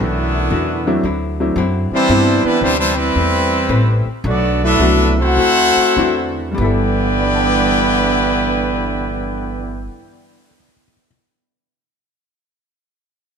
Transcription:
0.00 0.49 B1 medium
0.00 1.00 F#2 medium
0.00 1.00 A2 medium
0.00 0.35 B2 soft
0.00 1.00 E3 medium
0.00 0.36 A3 soft
0.00 1.01 A3 medium
0.00 1.01 B3 medium
0.00 0.36 D4 medium
0.00 1.01 D4 medium
0.00 1.01 E4 medium
0.00 0.36 F#4 medium
0.50 1.02 E2 loud
0.50 0.88 B2 medium
0.50 0.88 A3 medium
0.50 0.89 D4 medium
0.50 0.89 F#4 medium
0.87 1.02 F#3 medium
0.87 1.02 A3 medium
0.87 1.02 C4 medium
0.87 1.02 D4 medium
0.87 1.02 E4 medium
1.03 1.55 D2 medium
1.03 1.41 D3 medium
1.03 1.41 F#3 medium
1.03 1.41 C4 medium
1.03 1.42 E4 medium
1.40 1.55 F#3 medium
1.40 1.55 A3 medium
1.40 1.55 C4 medium
1.40 1.55 D4 medium
1.40 1.56 E4 medium
1.56 1.89 F#2 loud
1.56 1.94 D3 medium
1.56 1.94 F#3 medium
1.56 1.94 C4 medium
1.56 1.94 E4 medium
1.91 2.41 E3 loud
1.91 2.41 G3 medium
1.91 2.42 G3 medium
1.91 2.41 C4 loud
1.91 2.43 D4 medium
1.91 2.42 E4 loud
1.91 2.42 C5 loud
1.91 muted upright bass stroke soft
2.09 2.42 G2 medium
2.09 2.46 C3 medium
2.09 2.47 E3 soft
2.09 2.90 G3 medium
2.09 2.91 B3 medium
2.09 2.47 B3 medium
2.09 2.91 C4 medium
2.09 2.91 D4 medium
2.09 2.47 D4 medium
2.09 2.91 E4 medium
2.42 2.60 E3 medium
2.42 2.59 G3 medium
2.42 2.61 G3 medium
2.42 2.61 B3 medium
2.42 2.60 D4 medium
2.42 2.60 E4 medium
2.42 2.62 B4 loud
2.42 muted upright bass stroke soft
2.61 3.13 D2 loud
2.61 2.99 C3 medium
2.61 2.77 E3 medium
2.61 3.00 E3 medium
2.61 2.77 G3 loud
2.61 2.78 G3 loud
2.61 3.00 B3 medium
2.61 2.77 C4 loud
2.61 2.78 D4 loud
2.61 3.00 D4 medium
2.61 2.79 E4 loud
2.61 2.78 C5 loud
2.78 2.94 E3 medium
2.78 2.94 G3 medium
2.78 2.94 C4 medium
2.78 2.96 D4 medium
2.78 2.95 E4 medium
2.78 2.96 C5 loud
2.95 4.05 E3 medium
2.95 4.05 G3 medium
2.95 4.05 C4 medium
2.95 4.05 E4 medium
2.95 4.05 B4 loud
3.15 3.68 E2 medium
3.15 3.54 A3 soft
3.15 3.54 C4 medium
3.15 3.55 G4 medium
3.15 3.55 B4 medium
3.69 4.03 A1 loud
3.69 4.08 A3 medium
3.69 4.08 C4 medium
3.69 4.08 G4 medium
3.69 4.08 B4 medium
4.06 muted upright bass stroke soft
4.24 4.78 B1 loud
4.24 4.64 B2 medium
4.24 4.60 F#3 medium
4.24 4.64 A3 medium
4.24 4.60 A3 medium
4.24 4.64 D4 medium
4.24 4.60 D4 medium
4.24 4.65 F#4 medium
4.28 4.61 B3 medium
4.28 4.61 F#4 medium
4.28 4.61 A4 medium
4.28 4.61 D5 medium
4.64 5.16 F#3 medium
4.64 5.16 A3 loud
4.64 5.17 D4 medium
4.64 5.16 E4 medium
4.64 5.17 A4 medium
4.64 5.16 B4 medium
4.64 5.16 E5 loud
4.79 5.35 C2 loud
4.79 5.20 B2 medium
4.79 5.15 F#3 medium
4.79 5.20 A3 medium
4.79 5.15 A3 medium
4.79 5.15 B3 medium
4.79 5.21 D4 medium
4.79 5.15 D4 medium
4.79 5.21 F#4 medium
4.79 5.15 F#4 medium
5.18 6.37 A3 medium
5.18 6.37 C4 medium
5.18 6.39 E4 loud
5.18 6.37 F#4 medium
5.18 6.39 A4 loud
5.18 6.39 C5 medium
5.18 6.39 F#5 loud
5.36 5.74 D2 medium
5.36 5.79 D3 soft
5.36 5.79 C4 medium
5.36 5.79 E4 medium
5.36 5.80 F#4 medium
5.77 muted upright bass stroke soft
5.97 6.56 E2 loud
5.97 6.39 D3 medium
5.97 6.58 E3 medium
5.97 6.58 A3 medium
5.97 6.58 C4 medium
5.97 6.40 C4 medium
5.97 6.58 D4 medium
5.97 6.40 E4 medium
5.97 6.58 F#4 medium
5.97 6.40 F#4 medium
6.51 9.84 G2 medium
6.51 10.04 G3 medium
6.51 9.88 G3 medium
6.57 9.87 G1 loud
6.57 9.86 G2 loud
6.57 9.87 D3 medium
6.57 9.86 E3 medium
6.57 9.91 B3 medium
6.57 9.87 B3 loud
6.57 10.09 B3 medium
6.57 9.88 E4 medium
6.57 9.94 E4 medium
6.57 9.88 B4 medium
6.57 9.88 D5 medium
6.57 9.88 G5 loud
6.62 10.12 E4 medium
6.62 9.97 A4 medium
6.62 10.15 A4 medium
7.19 10.48 D5 soft
7.27 10.56 F#5 soft
7.35 10.64 A5 soft
7.44 10.73 D6 soft
7.54 10.83 F#6 soft
7.65 10.94 A6 soft
7.77 11.06 D7 soft

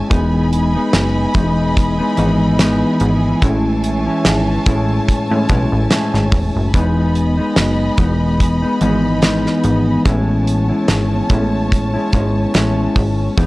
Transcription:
0.00 0.10 G#3 medium
0.00 0.11 C#4 medium
0.00 0.11 E4 medium
0.00 13.34 G#5 medium
0.10 0.77 E1 loud
0.10 0.75 E3 medium
0.10 6.71 E3 medium
0.10 0.75 G#3 medium
0.10 0.75 B3 loud
0.10 0.74 D#4 medium
0.10 3.40 D#5 medium
0.10 3.39 B5 medium
0.10 kick loud
0.10 closed hi-hat medium
0.53 closed hi-hat medium
0.75 1.34 G#3 soft
0.75 1.35 B3 medium
0.75 1.35 D#4 medium
0.93 1.27 F#1 loud
0.93 snare loud
0.93 clap medium
0.93 closed hi-hat medium
1.34 2.01 E1 medium
1.34 1.99 E3 medium
1.34 1.99 G#3 medium
1.34 1.99 B3 medium
1.34 1.98 D#4 medium
1.34 kick medium
1.34 closed hi-hat medium
1.77 kick medium
1.77 closed hi-hat medium
1.99 2.17 G#3 soft
1.99 2.18 B3 medium
1.99 2.18 D#4 medium
2.17 2.84 G#1 medium
2.17 2.58 E3 medium
2.17 2.58 G#3 medium
2.17 2.59 B3 medium
2.17 2.60 D#4 medium
2.17 closed hi-hat medium
2.59 6.09 E3 medium
2.59 3.42 G#3 medium
2.59 3.42 B3 medium
2.59 3.43 D#4 medium
2.59 snare loud
2.59 clap medium
2.59 closed hi-hat loud
3.00 3.34 G#1 loud
3.00 closed hi-hat medium
3.42 4.09 A1 loud
3.42 4.06 A2 medium
3.42 4.07 G#3 medium
3.42 4.06 C#4 medium
3.42 4.04 E4 loud
3.42 6.71 C#5 medium
3.42 6.71 A5 medium
3.42 kick loud
3.42 closed hi-hat medium
3.84 closed hi-hat medium
4.06 4.66 G#3 soft
4.06 4.66 C#4 medium
4.06 4.66 E4 medium
4.25 4.58 G#1 loud
4.25 snare loud
4.25 clap medium
4.25 closed hi-hat medium
4.66 5.00 A1 medium
4.66 5.30 A2 medium
4.66 5.31 G#3 medium
4.66 5.31 C#4 medium
4.66 5.29 E4 medium
4.66 kick loud
4.66 closed hi-hat medium
5.08 kick medium
5.08 closed hi-hat medium
5.30 5.46 A2 medium
5.30 5.49 G#3 soft
5.30 5.50 C#4 medium
5.30 5.49 E4 medium
5.49 5.68 B1 loud
5.49 5.90 A2 medium
5.49 5.91 G#3 medium
5.49 5.91 C#4 medium
5.49 5.92 E4 medium
5.49 kick loud
5.49 closed hi-hat medium
5.72 5.87 A1 medium
5.90 6.74 A2 medium
5.90 6.74 G#3 medium
5.90 6.74 C#4 medium
5.90 6.75 E4 medium
5.90 snare loud
5.90 clap medium
5.90 closed hi-hat medium
6.14 6.29 G#1 medium
6.14 snare soft
6.32 6.51 E1 medium
6.32 kick loud
6.32 open hi-hat soft
6.56 6.71 F#1 medium
6.74 7.40 E1 loud
6.74 7.38 E3 medium
6.74 7.38 G#3 medium
6.74 13.46 B3 medium
6.74 7.38 B3 medium
6.74 7.36 D#4 medium
6.74 10.03 D#5 medium
6.74 10.03 B5 medium
6.74 kick loud
6.74 closed hi-hat medium
7.15 closed hi-hat medium
7.37 7.97 G#3 soft
7.37 7.99 B3 soft
7.37 7.98 D#4 medium
7.56 7.90 F#1 medium
7.56 snare loud
7.56 clap medium
7.56 closed hi-hat loud
7.97 8.65 E1 medium
7.97 8.62 E3 medium
7.97 8.63 G#3 medium
7.97 8.62 B3 medium
7.97 8.61 D#4 medium
7.97 kick medium
7.97 closed hi-hat medium
8.40 kick medium
8.40 closed hi-hat medium
8.62 8.80 G#3 soft
8.62 8.81 B3 medium
8.62 8.81 D#4 medium
8.81 9.48 G#1 medium
8.81 9.21 E3 medium
8.81 9.22 G#3 medium
8.81 9.23 B3 medium
8.81 9.23 D#4 medium
8.81 closed hi-hat medium
9.22 12.72 E3 medium
9.22 10.05 G#3 medium
9.22 10.06 B3 medium
9.22 10.06 D#4 medium
9.22 snare loud
9.22 clap medium
9.22 closed hi-hat medium
9.46 snare soft
9.64 9.97 G#1 loud
9.64 closed hi-hat medium
10.05 10.72 A1 loud
10.05 10.70 A2 medium
10.05 10.70 G#3 medium
10.05 10.69 C#4 medium
10.05 10.68 E4 medium
10.05 13.35 C#5 medium
10.05 13.35 A5 medium
10.05 kick loud
10.05 closed hi-hat medium
10.47 closed hi-hat medium
10.69 11.29 G#3 soft
10.69 11.30 C#4 medium
10.69 11.30 E4 medium
10.88 11.22 G#1 loud
10.88 snare loud
10.88 clap medium
10.88 closed hi-hat medium
11.29 11.97 A1 loud
11.29 11.94 A2 medium
11.29 11.94 G#3 medium
11.29 11.94 C#4 medium
11.29 11.92 E4 medium
11.29 kick loud
11.29 closed hi-hat medium
11.72 kick medium
11.72 closed hi-hat medium
11.94 12.12 G#3 soft
11.94 12.13 C#4 soft
11.94 12.13 E4 medium
12.13 12.46 G#1 medium
12.13 12.54 G#3 medium
12.13 12.55 C#4 medium
12.13 12.55 E4 medium
12.13 kick medium
12.13 closed hi-hat medium
12.55 12.88 A1 loud
12.55 13.37 G#3 medium
12.55 13.38 C#4 medium
12.55 13.38 E4 medium
12.55 snare loud
12.55 clap medium
12.55 closed hi-hat medium
12.96 13.29 G#1 medium
12.96 kick loud
12.96 open hi-hat medium
13.37 13.46 E1 loud
13.37 13.46 E3 medium
13.37 13.46 G#3 medium
13.37 13.46 B3 loud
13.37 13.46 D#4 loud
13.37 13.46 D#5 medium
13.37 13.46 G#5 medium
13.37 13.46 B5 medium
13.37 kick loud
13.37 closed hi-hat medium

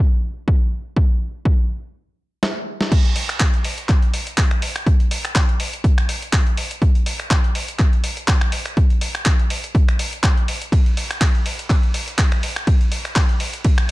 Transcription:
0.48 kick loud
0.97 kick loud
1.45 kick loud
2.43 snare loud
2.81 snare medium
2.92 kick loud
2.92 closed hi-hat medium
2.92 crash loud
3.05 closed hi-hat soft
3.16 open hi-hat loud
3.29 finger snap medium
3.29 closed hi-hat medium
3.40 kick loud
3.40 clap loud
3.40 closed hi-hat medium
3.54 closed hi-hat soft
3.64 open hi-hat loud
3.78 closed hi-hat medium
3.89 kick loud
3.89 clap medium
3.89 closed hi-hat medium
4.02 closed hi-hat soft
4.14 open hi-hat loud
4.27 closed hi-hat medium
4.38 kick loud
4.38 clap loud
4.38 closed hi-hat medium
4.51 finger snap medium
4.51 closed hi-hat soft
4.62 open hi-hat loud
4.76 finger snap medium
4.76 closed hi-hat medium
4.87 kick loud
4.87 closed hi-hat medium
5.00 closed hi-hat soft
5.11 open hi-hat loud
5.25 finger snap medium
5.25 closed hi-hat medium
5.35 kick loud
5.35 clap loud
5.35 closed hi-hat medium
5.49 closed hi-hat soft
5.60 open hi-hat loud
5.74 closed hi-hat medium
5.84 kick loud
5.84 closed hi-hat medium
5.98 finger snap medium
5.98 closed hi-hat soft
6.09 open hi-hat loud
6.22 closed hi-hat medium
6.33 kick loud
6.33 clap loud
6.33 closed hi-hat medium
6.47 closed hi-hat soft
6.57 open hi-hat loud
6.71 closed hi-hat medium
6.82 kick loud
6.82 closed hi-hat soft
6.95 closed hi-hat soft
7.06 open hi-hat loud
7.20 finger snap medium
7.20 closed hi-hat medium
7.31 kick loud
7.31 clap loud
7.31 closed hi-hat medium
7.44 closed hi-hat soft
7.55 open hi-hat loud
7.69 closed hi-hat medium
7.79 kick loud
7.79 clap medium
7.79 closed hi-hat medium
7.93 closed hi-hat soft
8.04 open hi-hat loud
8.17 closed hi-hat medium
8.28 kick loud
8.28 clap loud
8.28 closed hi-hat medium
8.41 finger snap medium
8.41 closed hi-hat soft
8.52 open hi-hat loud
8.66 finger snap medium
8.66 closed hi-hat medium
8.77 kick loud
8.77 closed hi-hat soft
8.90 closed hi-hat soft
9.01 open hi-hat loud
9.15 finger snap medium
9.15 closed hi-hat medium
9.25 kick loud
9.25 clap loud
9.25 closed hi-hat soft
9.39 closed hi-hat soft
9.50 open hi-hat loud
9.64 closed hi-hat medium
9.75 kick loud
9.75 closed hi-hat medium
9.89 finger snap medium
9.89 closed hi-hat soft
9.99 open hi-hat loud
10.13 closed hi-hat soft
10.23 kick loud
10.23 clap loud
10.23 closed hi-hat medium
10.37 closed hi-hat soft
10.48 open hi-hat loud
10.62 closed hi-hat medium
10.72 kick loud
10.72 closed hi-hat soft
10.72 ride medium
10.86 closed hi-hat soft
10.97 open hi-hat loud
11.11 finger snap medium
11.11 closed hi-hat medium
11.21 kick loud
11.21 clap loud
11.21 closed hi-hat medium
11.21 ride medium
11.35 closed hi-hat soft
11.46 open hi-hat loud
11.59 closed hi-hat medium
11.70 kick loud
11.70 clap medium
11.70 closed hi-hat medium
11.70 ride medium
11.83 closed hi-hat soft
11.94 open hi-hat loud
12.08 closed hi-hat medium
12.18 kick loud
12.18 clap loud
12.18 closed hi-hat medium
12.18 ride medium
12.32 finger snap medium
12.32 closed hi-hat soft
12.43 open hi-hat loud
12.56 finger snap medium
12.56 closed hi-hat medium
12.67 kick loud
12.67 closed hi-hat medium
12.67 ride medium
12.81 closed hi-hat soft
12.92 open hi-hat loud
13.05 finger snap medium
13.05 closed hi-hat medium
13.16 kick loud
13.16 clap loud
13.16 closed hi-hat medium
13.16 ride medium
13.29 closed hi-hat soft
13.40 open hi-hat loud
13.53 closed hi-hat medium
13.65 kick loud
13.65 closed hi-hat medium
13.65 ride medium
13.78 finger snap medium
13.78 closed hi-hat soft

